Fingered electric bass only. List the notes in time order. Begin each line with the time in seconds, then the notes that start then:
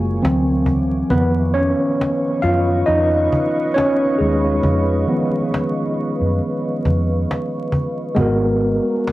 Already playing: F#1
0.24 D2
1.11 F2
2.44 F#2
2.88 F2
4.20 D#2
4.64 F2
6.21 F#2
6.86 F2
8.17 G#1